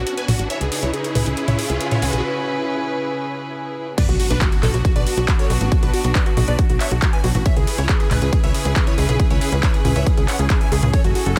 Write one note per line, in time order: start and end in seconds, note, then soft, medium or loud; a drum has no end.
0.00 0.47 B3 medium
0.00 0.47 D4 medium
0.00 0.47 F#4 medium
0.00 riser medium
0.07 0.14 F#4 medium
0.07 closed hi-hat medium
0.17 0.25 B4 medium
0.17 0.25 G#5 loud
0.17 closed hi-hat medium
0.28 0.37 B1 loud
0.28 0.36 F#4 medium
0.28 open hi-hat medium
0.28 mid tom medium
0.39 0.48 A1 medium
0.39 0.47 F#4 medium
0.39 closed hi-hat medium
0.50 3.94 C#3 medium
0.50 3.94 C#4 medium
0.50 3.94 E4 medium
0.50 3.94 G#4 medium
0.50 3.94 B4 medium
0.50 0.57 C#5 medium
0.50 0.57 E5 loud
0.50 closed hi-hat medium
0.61 0.70 C#2 medium
0.61 0.68 G#4 medium
0.61 closed hi-hat medium
0.72 0.79 G#4 medium
0.72 open hi-hat loud
0.83 0.92 C#2 medium
0.83 0.90 E4 medium
0.83 0.90 C#5 medium
0.83 closed hi-hat medium
0.93 1.01 G#4 medium
0.93 closed hi-hat medium
1.04 1.12 G#4 medium
1.04 closed hi-hat soft
1.15 1.24 C#2 medium
1.15 1.23 G#4 medium
1.15 1.23 B4 medium
1.15 open hi-hat medium
1.15 mid tom medium
1.26 1.35 C#2 medium
1.26 1.34 G#4 medium
1.26 closed hi-hat medium
1.37 1.44 G#4 medium
1.37 closed hi-hat medium
1.48 1.57 C#2 medium
1.48 1.55 C#5 medium
1.48 1.55 E5 medium
1.48 closed hi-hat medium
1.48 mid tom medium
1.59 1.66 G#4 medium
1.59 open hi-hat loud
1.70 1.79 C#2 medium
1.70 1.77 G#4 medium
1.70 closed hi-hat soft
1.81 1.88 G#4 medium
1.81 closed hi-hat medium
1.91 1.99 E4 medium
1.91 1.99 C#5 medium
1.91 closed hi-hat medium
1.91 mid tom medium
2.02 2.11 C#2 loud
2.02 2.10 G#4 medium
2.02 open hi-hat medium
2.13 2.22 B1 medium
2.13 2.21 G#4 medium
2.13 closed hi-hat medium
3.98 7.42 B3 medium
3.98 7.42 D4 medium
3.98 7.42 F#4 medium
3.98 4.05 B4 medium
3.98 4.05 D5 loud
3.98 kick loud
3.98 closed hi-hat medium
3.98 crash loud
3.98 impact medium
4.09 4.18 B1 medium
4.09 4.16 F#4 medium
4.09 closed hi-hat medium
4.19 4.27 F#4 medium
4.19 open hi-hat loud
4.30 4.40 B1 medium
4.30 4.38 D4 medium
4.30 4.38 B4 medium
4.30 closed hi-hat medium
4.41 4.49 F#4 medium
4.41 kick loud
4.41 clap loud
4.41 closed hi-hat medium
4.52 4.60 F#4 medium
4.52 closed hi-hat medium
4.63 4.72 B1 medium
4.63 4.70 F#4 medium
4.63 4.70 A4 medium
4.63 clap medium
4.63 open hi-hat medium
4.63 mid tom medium
4.74 4.83 B1 medium
4.74 4.81 F#4 medium
4.74 closed hi-hat medium
4.85 4.92 F#4 medium
4.85 kick loud
4.85 closed hi-hat medium
4.96 5.05 B1 medium
4.96 5.03 B4 medium
4.96 5.03 D5 loud
4.96 5.03 D5 medium
4.96 closed hi-hat medium
5.07 5.14 F#4 medium
5.07 open hi-hat loud
5.17 5.26 B1 medium
5.17 5.25 F#4 medium
5.17 closed hi-hat medium
5.28 5.36 F#4 medium
5.28 kick loud
5.28 clap loud
5.28 closed hi-hat medium
5.39 5.47 A4 medium
5.39 5.47 C#5 medium
5.39 closed hi-hat medium
5.50 5.59 B1 loud
5.50 5.57 F#4 medium
5.50 open hi-hat loud
5.61 5.70 A1 medium
5.61 5.68 F#4 medium
5.61 closed hi-hat medium
5.72 5.79 F#4 medium
5.72 kick loud
5.72 closed hi-hat medium
5.83 5.92 B1 medium
5.83 5.90 D4 medium
5.83 5.90 B4 medium
5.83 closed hi-hat medium
5.93 6.01 F#4 medium
5.93 open hi-hat loud
6.04 6.13 B1 medium
6.04 6.12 F#4 medium
6.04 closed hi-hat medium
6.15 6.23 D4 medium
6.15 6.23 B4 loud
6.15 6.23 B4 medium
6.15 kick loud
6.15 clap loud
6.15 closed hi-hat medium
6.26 6.34 F#4 medium
6.26 closed hi-hat soft
6.37 6.46 B1 medium
6.37 6.44 F#4 medium
6.37 open hi-hat medium
6.37 mid tom medium
6.48 6.57 B1 medium
6.48 6.55 B4 medium
6.48 6.55 D5 loud
6.48 6.55 D5 medium
6.48 closed hi-hat medium
6.59 6.66 F#4 medium
6.59 kick loud
6.59 closed hi-hat medium
6.70 6.79 B1 medium
6.70 6.77 F#4 medium
6.70 closed hi-hat medium
6.80 6.88 C#5 medium
6.80 6.88 E5 medium
6.80 6.88 E5 loud
6.80 clap medium
6.80 open hi-hat loud
6.91 7.00 B1 medium
6.91 6.99 F#4 medium
6.91 closed hi-hat medium
7.02 7.10 F#4 medium
7.02 kick loud
7.02 clap loud
7.02 closed hi-hat medium
7.13 7.20 B4 medium
7.13 7.20 G#5 medium
7.13 closed hi-hat medium
7.24 7.33 B1 medium
7.24 7.31 F#4 medium
7.24 open hi-hat loud
7.35 7.44 A1 medium
7.35 7.42 F#4 medium
7.35 closed hi-hat medium
7.35 mid tom medium
7.46 10.90 C#3 medium
7.46 11.39 C#4 medium
7.46 10.90 E4 medium
7.46 11.39 G#4 medium
7.46 10.90 B4 loud
7.46 7.53 C#5 medium
7.46 7.53 E5 loud
7.46 kick loud
7.46 closed hi-hat medium
7.57 7.66 C#2 medium
7.57 7.64 G#4 medium
7.57 closed hi-hat medium
7.67 7.75 G#4 medium
7.67 open hi-hat loud
7.78 7.87 C#2 medium
7.78 7.86 E4 medium
7.78 7.86 C#5 medium
7.78 closed hi-hat medium
7.89 7.97 G#4 medium
7.89 kick loud
7.89 clap loud
7.89 closed hi-hat medium
8.00 8.07 G#4 medium
8.00 closed hi-hat soft
8.11 8.20 C#2 medium
8.11 8.18 G#4 medium
8.11 8.18 B4 medium
8.11 8.18 B4 loud
8.11 clap medium
8.11 open hi-hat loud
8.11 mid tom medium
8.22 8.31 C#2 medium
8.22 8.29 G#4 medium
8.22 closed hi-hat medium
8.33 8.40 G#4 medium
8.33 kick loud
8.33 closed hi-hat medium
8.43 8.53 C#2 medium
8.43 8.51 C#5 medium
8.43 8.51 E5 loud
8.43 8.51 E5 medium
8.43 closed hi-hat medium
8.54 8.62 G#4 medium
8.54 open hi-hat loud
8.65 8.74 C#2 medium
8.65 8.73 G#4 medium
8.65 closed hi-hat medium
8.76 8.83 G#4 medium
8.76 8.84 G#4 medium
8.76 kick loud
8.76 clap loud
8.76 closed hi-hat medium
8.87 8.94 E4 medium
8.87 8.94 C#5 loud
8.87 closed hi-hat medium
8.98 9.07 C#2 loud
8.98 9.05 G#4 medium
8.98 open hi-hat loud
9.09 9.18 B1 medium
9.09 9.16 G#4 medium
9.09 closed hi-hat medium
9.20 9.27 G#4 medium
9.20 kick loud
9.20 closed hi-hat medium
9.30 9.40 C#2 medium
9.30 9.38 E4 medium
9.30 9.38 C#5 medium
9.30 closed hi-hat medium
9.41 9.49 G#4 medium
9.41 open hi-hat loud
9.52 9.61 C#2 medium
9.52 9.60 G#4 medium
9.52 closed hi-hat medium
9.63 9.70 E4 medium
9.63 9.70 C#5 medium
9.63 kick loud
9.63 clap loud
9.63 closed hi-hat medium
9.74 9.81 G#4 medium
9.74 closed hi-hat soft
9.85 9.94 C#2 medium
9.85 9.92 G#4 medium
9.85 open hi-hat loud
9.85 mid tom medium
9.96 10.05 C#2 medium
9.96 10.03 C#5 medium
9.96 10.03 E5 loud
9.96 10.03 E5 medium
9.96 closed hi-hat medium
10.07 10.14 G#4 medium
10.07 kick loud
10.07 closed hi-hat medium
10.17 10.27 C#2 medium
10.17 10.25 G#4 medium
10.17 closed hi-hat medium
10.28 10.36 C#5 medium
10.28 10.36 F#5 loud
10.28 10.36 F#5 medium
10.28 clap medium
10.28 open hi-hat loud
10.39 10.48 C#2 medium
10.39 10.47 G#4 medium
10.39 closed hi-hat soft
10.50 10.57 G#4 medium
10.50 kick loud
10.50 clap loud
10.50 closed hi-hat medium
10.61 10.68 E5 medium
10.61 10.68 G#5 loud
10.61 10.68 G#5 medium
10.61 closed hi-hat soft
10.72 10.81 C#2 loud
10.72 10.79 G#4 medium
10.72 open hi-hat loud
10.83 10.92 C#2 medium
10.83 10.90 G#4 medium
10.83 closed hi-hat medium
10.83 mid tom medium
10.93 11.39 F#3 medium
10.93 11.39 E4 medium
10.93 11.01 A4 medium
10.93 11.39 A4 loud
10.93 11.01 C#5 loud
10.93 kick loud
10.93 closed hi-hat medium
10.93 ride medium
11.04 11.14 F#1 medium
11.04 11.12 F#4 medium
11.04 closed hi-hat medium
11.15 11.23 F#4 medium
11.15 open hi-hat loud
11.26 11.35 F#1 medium
11.26 11.33 F#4 medium
11.26 11.33 A4 medium
11.26 closed hi-hat medium